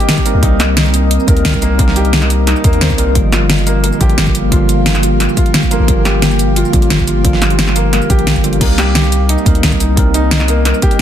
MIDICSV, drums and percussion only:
0, 0, Header, 1, 2, 480
1, 0, Start_track
1, 0, Key_signature, -3, "minor"
1, 0, Tempo, 340909
1, 603, Time_signature, 4, 2, 24, 8
1, 15513, End_track
2, 0, Start_track
2, 0, Title_t, "Drums"
2, 4, Note_on_c, 9, 42, 40
2, 122, Note_off_c, 9, 42, 0
2, 122, Note_on_c, 9, 38, 126
2, 122, Note_on_c, 9, 42, 90
2, 244, Note_on_c, 9, 82, 27
2, 245, Note_on_c, 9, 36, 67
2, 262, Note_off_c, 9, 38, 0
2, 262, Note_off_c, 9, 42, 0
2, 361, Note_off_c, 9, 82, 0
2, 361, Note_on_c, 9, 42, 68
2, 361, Note_on_c, 9, 82, 60
2, 385, Note_off_c, 9, 36, 0
2, 502, Note_off_c, 9, 42, 0
2, 502, Note_off_c, 9, 82, 0
2, 602, Note_on_c, 9, 36, 122
2, 602, Note_on_c, 9, 42, 91
2, 742, Note_off_c, 9, 36, 0
2, 742, Note_off_c, 9, 42, 0
2, 842, Note_on_c, 9, 40, 58
2, 842, Note_on_c, 9, 42, 65
2, 842, Note_on_c, 9, 82, 58
2, 983, Note_off_c, 9, 40, 0
2, 983, Note_off_c, 9, 42, 0
2, 983, Note_off_c, 9, 82, 0
2, 1081, Note_on_c, 9, 38, 126
2, 1081, Note_on_c, 9, 42, 94
2, 1204, Note_on_c, 9, 82, 27
2, 1222, Note_off_c, 9, 38, 0
2, 1222, Note_off_c, 9, 42, 0
2, 1320, Note_off_c, 9, 82, 0
2, 1320, Note_on_c, 9, 42, 65
2, 1320, Note_on_c, 9, 82, 57
2, 1461, Note_off_c, 9, 42, 0
2, 1461, Note_off_c, 9, 82, 0
2, 1561, Note_on_c, 9, 42, 93
2, 1685, Note_on_c, 9, 82, 26
2, 1702, Note_off_c, 9, 42, 0
2, 1801, Note_on_c, 9, 36, 114
2, 1802, Note_off_c, 9, 82, 0
2, 1802, Note_on_c, 9, 42, 69
2, 1802, Note_on_c, 9, 82, 63
2, 1923, Note_off_c, 9, 42, 0
2, 1923, Note_on_c, 9, 42, 36
2, 1942, Note_off_c, 9, 36, 0
2, 1942, Note_off_c, 9, 82, 0
2, 2040, Note_off_c, 9, 42, 0
2, 2040, Note_on_c, 9, 38, 125
2, 2040, Note_on_c, 9, 42, 90
2, 2164, Note_on_c, 9, 36, 68
2, 2164, Note_on_c, 9, 82, 27
2, 2181, Note_off_c, 9, 38, 0
2, 2181, Note_off_c, 9, 42, 0
2, 2282, Note_off_c, 9, 82, 0
2, 2282, Note_on_c, 9, 42, 64
2, 2282, Note_on_c, 9, 82, 55
2, 2305, Note_off_c, 9, 36, 0
2, 2422, Note_off_c, 9, 42, 0
2, 2422, Note_off_c, 9, 82, 0
2, 2521, Note_on_c, 9, 36, 123
2, 2521, Note_on_c, 9, 42, 93
2, 2644, Note_on_c, 9, 38, 37
2, 2662, Note_off_c, 9, 36, 0
2, 2662, Note_off_c, 9, 42, 0
2, 2760, Note_on_c, 9, 42, 63
2, 2760, Note_on_c, 9, 82, 56
2, 2785, Note_off_c, 9, 38, 0
2, 2883, Note_off_c, 9, 42, 0
2, 2883, Note_on_c, 9, 42, 32
2, 2901, Note_off_c, 9, 82, 0
2, 3000, Note_off_c, 9, 42, 0
2, 3000, Note_on_c, 9, 38, 121
2, 3000, Note_on_c, 9, 42, 87
2, 3123, Note_on_c, 9, 40, 34
2, 3123, Note_on_c, 9, 82, 27
2, 3141, Note_off_c, 9, 38, 0
2, 3141, Note_off_c, 9, 42, 0
2, 3241, Note_off_c, 9, 82, 0
2, 3241, Note_on_c, 9, 42, 64
2, 3241, Note_on_c, 9, 82, 57
2, 3264, Note_off_c, 9, 40, 0
2, 3382, Note_off_c, 9, 42, 0
2, 3382, Note_off_c, 9, 82, 0
2, 3480, Note_on_c, 9, 40, 37
2, 3480, Note_on_c, 9, 42, 93
2, 3604, Note_on_c, 9, 82, 27
2, 3621, Note_off_c, 9, 40, 0
2, 3621, Note_off_c, 9, 42, 0
2, 3721, Note_off_c, 9, 82, 0
2, 3721, Note_on_c, 9, 36, 108
2, 3721, Note_on_c, 9, 42, 69
2, 3721, Note_on_c, 9, 82, 59
2, 3843, Note_off_c, 9, 42, 0
2, 3843, Note_on_c, 9, 42, 34
2, 3861, Note_off_c, 9, 82, 0
2, 3862, Note_off_c, 9, 36, 0
2, 3959, Note_off_c, 9, 42, 0
2, 3959, Note_on_c, 9, 38, 125
2, 3959, Note_on_c, 9, 42, 87
2, 4084, Note_on_c, 9, 36, 68
2, 4084, Note_on_c, 9, 82, 26
2, 4100, Note_off_c, 9, 38, 0
2, 4100, Note_off_c, 9, 42, 0
2, 4200, Note_off_c, 9, 82, 0
2, 4200, Note_on_c, 9, 42, 69
2, 4200, Note_on_c, 9, 82, 60
2, 4225, Note_off_c, 9, 36, 0
2, 4341, Note_off_c, 9, 42, 0
2, 4341, Note_off_c, 9, 82, 0
2, 4440, Note_on_c, 9, 42, 89
2, 4442, Note_on_c, 9, 36, 115
2, 4581, Note_off_c, 9, 42, 0
2, 4583, Note_off_c, 9, 36, 0
2, 4681, Note_on_c, 9, 40, 54
2, 4681, Note_on_c, 9, 42, 64
2, 4681, Note_on_c, 9, 82, 59
2, 4822, Note_off_c, 9, 40, 0
2, 4822, Note_off_c, 9, 42, 0
2, 4822, Note_off_c, 9, 82, 0
2, 4922, Note_on_c, 9, 38, 119
2, 4922, Note_on_c, 9, 42, 91
2, 5046, Note_on_c, 9, 82, 28
2, 5063, Note_off_c, 9, 38, 0
2, 5063, Note_off_c, 9, 42, 0
2, 5163, Note_off_c, 9, 82, 0
2, 5163, Note_on_c, 9, 42, 62
2, 5163, Note_on_c, 9, 82, 61
2, 5304, Note_off_c, 9, 42, 0
2, 5304, Note_off_c, 9, 82, 0
2, 5403, Note_on_c, 9, 42, 88
2, 5526, Note_on_c, 9, 82, 26
2, 5543, Note_off_c, 9, 42, 0
2, 5642, Note_off_c, 9, 82, 0
2, 5642, Note_on_c, 9, 42, 67
2, 5642, Note_on_c, 9, 82, 62
2, 5643, Note_on_c, 9, 36, 105
2, 5766, Note_off_c, 9, 42, 0
2, 5766, Note_on_c, 9, 42, 36
2, 5783, Note_off_c, 9, 36, 0
2, 5783, Note_off_c, 9, 82, 0
2, 5882, Note_off_c, 9, 42, 0
2, 5882, Note_on_c, 9, 38, 119
2, 5882, Note_on_c, 9, 42, 88
2, 6006, Note_on_c, 9, 36, 65
2, 6007, Note_on_c, 9, 82, 26
2, 6023, Note_off_c, 9, 38, 0
2, 6023, Note_off_c, 9, 42, 0
2, 6123, Note_off_c, 9, 82, 0
2, 6123, Note_on_c, 9, 42, 70
2, 6123, Note_on_c, 9, 82, 61
2, 6146, Note_off_c, 9, 36, 0
2, 6264, Note_off_c, 9, 42, 0
2, 6264, Note_off_c, 9, 82, 0
2, 6363, Note_on_c, 9, 36, 116
2, 6363, Note_on_c, 9, 42, 95
2, 6503, Note_off_c, 9, 36, 0
2, 6504, Note_off_c, 9, 42, 0
2, 6604, Note_on_c, 9, 42, 70
2, 6604, Note_on_c, 9, 82, 64
2, 6745, Note_off_c, 9, 42, 0
2, 6745, Note_off_c, 9, 82, 0
2, 6842, Note_on_c, 9, 38, 112
2, 6842, Note_on_c, 9, 42, 93
2, 6967, Note_on_c, 9, 40, 33
2, 6967, Note_on_c, 9, 82, 31
2, 6983, Note_off_c, 9, 38, 0
2, 6983, Note_off_c, 9, 42, 0
2, 7084, Note_off_c, 9, 82, 0
2, 7084, Note_on_c, 9, 42, 66
2, 7084, Note_on_c, 9, 82, 66
2, 7108, Note_off_c, 9, 40, 0
2, 7225, Note_off_c, 9, 42, 0
2, 7225, Note_off_c, 9, 82, 0
2, 7324, Note_on_c, 9, 40, 36
2, 7324, Note_on_c, 9, 42, 97
2, 7446, Note_on_c, 9, 82, 28
2, 7465, Note_off_c, 9, 40, 0
2, 7465, Note_off_c, 9, 42, 0
2, 7562, Note_on_c, 9, 36, 104
2, 7563, Note_off_c, 9, 82, 0
2, 7563, Note_on_c, 9, 42, 73
2, 7563, Note_on_c, 9, 82, 64
2, 7686, Note_off_c, 9, 42, 0
2, 7686, Note_on_c, 9, 42, 37
2, 7703, Note_off_c, 9, 36, 0
2, 7704, Note_off_c, 9, 82, 0
2, 7802, Note_off_c, 9, 42, 0
2, 7802, Note_on_c, 9, 38, 115
2, 7802, Note_on_c, 9, 42, 93
2, 7925, Note_on_c, 9, 36, 60
2, 7925, Note_on_c, 9, 82, 27
2, 7943, Note_off_c, 9, 38, 0
2, 7943, Note_off_c, 9, 42, 0
2, 8043, Note_off_c, 9, 82, 0
2, 8043, Note_on_c, 9, 42, 70
2, 8043, Note_on_c, 9, 82, 62
2, 8066, Note_off_c, 9, 36, 0
2, 8184, Note_off_c, 9, 42, 0
2, 8184, Note_off_c, 9, 82, 0
2, 8282, Note_on_c, 9, 36, 109
2, 8282, Note_on_c, 9, 42, 99
2, 8423, Note_off_c, 9, 36, 0
2, 8423, Note_off_c, 9, 42, 0
2, 8523, Note_on_c, 9, 40, 53
2, 8523, Note_on_c, 9, 42, 69
2, 8523, Note_on_c, 9, 82, 67
2, 8664, Note_off_c, 9, 40, 0
2, 8664, Note_off_c, 9, 42, 0
2, 8664, Note_off_c, 9, 82, 0
2, 8762, Note_on_c, 9, 38, 108
2, 8762, Note_on_c, 9, 42, 97
2, 8885, Note_on_c, 9, 82, 29
2, 8903, Note_off_c, 9, 38, 0
2, 8903, Note_off_c, 9, 42, 0
2, 9001, Note_off_c, 9, 82, 0
2, 9001, Note_on_c, 9, 42, 69
2, 9001, Note_on_c, 9, 82, 63
2, 9142, Note_off_c, 9, 42, 0
2, 9142, Note_off_c, 9, 82, 0
2, 9242, Note_on_c, 9, 42, 102
2, 9364, Note_on_c, 9, 82, 29
2, 9383, Note_off_c, 9, 42, 0
2, 9482, Note_off_c, 9, 82, 0
2, 9482, Note_on_c, 9, 42, 71
2, 9482, Note_on_c, 9, 82, 65
2, 9483, Note_on_c, 9, 36, 100
2, 9605, Note_off_c, 9, 42, 0
2, 9605, Note_on_c, 9, 42, 39
2, 9623, Note_off_c, 9, 82, 0
2, 9624, Note_off_c, 9, 36, 0
2, 9721, Note_off_c, 9, 42, 0
2, 9721, Note_on_c, 9, 38, 108
2, 9721, Note_on_c, 9, 42, 95
2, 9844, Note_on_c, 9, 82, 30
2, 9846, Note_on_c, 9, 36, 61
2, 9861, Note_off_c, 9, 38, 0
2, 9861, Note_off_c, 9, 42, 0
2, 9962, Note_off_c, 9, 82, 0
2, 9962, Note_on_c, 9, 42, 70
2, 9962, Note_on_c, 9, 82, 63
2, 9987, Note_off_c, 9, 36, 0
2, 10103, Note_off_c, 9, 42, 0
2, 10103, Note_off_c, 9, 82, 0
2, 10202, Note_on_c, 9, 42, 103
2, 10203, Note_on_c, 9, 36, 117
2, 10325, Note_on_c, 9, 38, 33
2, 10343, Note_off_c, 9, 42, 0
2, 10344, Note_off_c, 9, 36, 0
2, 10443, Note_on_c, 9, 40, 56
2, 10443, Note_on_c, 9, 42, 71
2, 10443, Note_on_c, 9, 82, 66
2, 10465, Note_off_c, 9, 38, 0
2, 10566, Note_off_c, 9, 42, 0
2, 10566, Note_on_c, 9, 42, 39
2, 10584, Note_off_c, 9, 40, 0
2, 10584, Note_off_c, 9, 82, 0
2, 10682, Note_off_c, 9, 42, 0
2, 10682, Note_on_c, 9, 38, 117
2, 10682, Note_on_c, 9, 42, 96
2, 10807, Note_on_c, 9, 40, 35
2, 10807, Note_on_c, 9, 82, 30
2, 10823, Note_off_c, 9, 38, 0
2, 10823, Note_off_c, 9, 42, 0
2, 10923, Note_off_c, 9, 82, 0
2, 10923, Note_on_c, 9, 42, 73
2, 10923, Note_on_c, 9, 82, 66
2, 10948, Note_off_c, 9, 40, 0
2, 11064, Note_off_c, 9, 42, 0
2, 11064, Note_off_c, 9, 82, 0
2, 11164, Note_on_c, 9, 40, 37
2, 11164, Note_on_c, 9, 42, 101
2, 11288, Note_on_c, 9, 82, 27
2, 11305, Note_off_c, 9, 40, 0
2, 11305, Note_off_c, 9, 42, 0
2, 11404, Note_off_c, 9, 82, 0
2, 11404, Note_on_c, 9, 36, 102
2, 11404, Note_on_c, 9, 42, 71
2, 11404, Note_on_c, 9, 82, 64
2, 11527, Note_off_c, 9, 42, 0
2, 11527, Note_on_c, 9, 42, 39
2, 11544, Note_off_c, 9, 36, 0
2, 11545, Note_off_c, 9, 82, 0
2, 11644, Note_off_c, 9, 42, 0
2, 11644, Note_on_c, 9, 38, 121
2, 11644, Note_on_c, 9, 42, 94
2, 11767, Note_on_c, 9, 36, 59
2, 11768, Note_on_c, 9, 82, 28
2, 11785, Note_off_c, 9, 38, 0
2, 11785, Note_off_c, 9, 42, 0
2, 11884, Note_off_c, 9, 82, 0
2, 11884, Note_on_c, 9, 42, 72
2, 11884, Note_on_c, 9, 82, 63
2, 11907, Note_off_c, 9, 36, 0
2, 12007, Note_off_c, 9, 42, 0
2, 12007, Note_on_c, 9, 42, 42
2, 12025, Note_off_c, 9, 82, 0
2, 12123, Note_off_c, 9, 42, 0
2, 12123, Note_on_c, 9, 36, 119
2, 12123, Note_on_c, 9, 42, 99
2, 12123, Note_on_c, 9, 49, 82
2, 12264, Note_off_c, 9, 36, 0
2, 12264, Note_off_c, 9, 42, 0
2, 12264, Note_off_c, 9, 49, 0
2, 12363, Note_on_c, 9, 40, 58
2, 12363, Note_on_c, 9, 42, 67
2, 12363, Note_on_c, 9, 82, 61
2, 12504, Note_off_c, 9, 40, 0
2, 12504, Note_off_c, 9, 42, 0
2, 12504, Note_off_c, 9, 82, 0
2, 12604, Note_on_c, 9, 38, 124
2, 12604, Note_on_c, 9, 42, 95
2, 12727, Note_on_c, 9, 82, 28
2, 12745, Note_off_c, 9, 38, 0
2, 12745, Note_off_c, 9, 42, 0
2, 12844, Note_off_c, 9, 82, 0
2, 12844, Note_on_c, 9, 42, 70
2, 12844, Note_on_c, 9, 82, 60
2, 12985, Note_off_c, 9, 42, 0
2, 12985, Note_off_c, 9, 82, 0
2, 13083, Note_on_c, 9, 42, 101
2, 13207, Note_on_c, 9, 82, 27
2, 13224, Note_off_c, 9, 42, 0
2, 13322, Note_on_c, 9, 36, 108
2, 13323, Note_off_c, 9, 82, 0
2, 13323, Note_on_c, 9, 42, 71
2, 13323, Note_on_c, 9, 82, 61
2, 13447, Note_off_c, 9, 42, 0
2, 13447, Note_on_c, 9, 42, 41
2, 13463, Note_off_c, 9, 36, 0
2, 13463, Note_off_c, 9, 82, 0
2, 13563, Note_off_c, 9, 42, 0
2, 13563, Note_on_c, 9, 38, 116
2, 13563, Note_on_c, 9, 42, 101
2, 13684, Note_on_c, 9, 36, 67
2, 13686, Note_on_c, 9, 82, 26
2, 13703, Note_off_c, 9, 38, 0
2, 13703, Note_off_c, 9, 42, 0
2, 13804, Note_off_c, 9, 82, 0
2, 13804, Note_on_c, 9, 42, 69
2, 13804, Note_on_c, 9, 82, 62
2, 13825, Note_off_c, 9, 36, 0
2, 13945, Note_off_c, 9, 42, 0
2, 13945, Note_off_c, 9, 82, 0
2, 14041, Note_on_c, 9, 36, 127
2, 14042, Note_on_c, 9, 42, 96
2, 14182, Note_off_c, 9, 36, 0
2, 14183, Note_off_c, 9, 42, 0
2, 14282, Note_on_c, 9, 42, 68
2, 14282, Note_on_c, 9, 82, 57
2, 14423, Note_off_c, 9, 42, 0
2, 14423, Note_off_c, 9, 82, 0
2, 14520, Note_on_c, 9, 38, 122
2, 14520, Note_on_c, 9, 42, 93
2, 14643, Note_on_c, 9, 40, 35
2, 14643, Note_on_c, 9, 82, 28
2, 14661, Note_off_c, 9, 38, 0
2, 14661, Note_off_c, 9, 42, 0
2, 14760, Note_off_c, 9, 82, 0
2, 14760, Note_on_c, 9, 42, 72
2, 14760, Note_on_c, 9, 82, 57
2, 14784, Note_off_c, 9, 40, 0
2, 14901, Note_off_c, 9, 42, 0
2, 14901, Note_off_c, 9, 82, 0
2, 15000, Note_on_c, 9, 40, 39
2, 15000, Note_on_c, 9, 42, 99
2, 15122, Note_on_c, 9, 82, 27
2, 15141, Note_off_c, 9, 40, 0
2, 15141, Note_off_c, 9, 42, 0
2, 15239, Note_off_c, 9, 82, 0
2, 15239, Note_on_c, 9, 42, 71
2, 15239, Note_on_c, 9, 82, 59
2, 15241, Note_on_c, 9, 36, 116
2, 15362, Note_off_c, 9, 42, 0
2, 15362, Note_on_c, 9, 42, 40
2, 15380, Note_off_c, 9, 82, 0
2, 15382, Note_off_c, 9, 36, 0
2, 15503, Note_off_c, 9, 42, 0
2, 15513, End_track
0, 0, End_of_file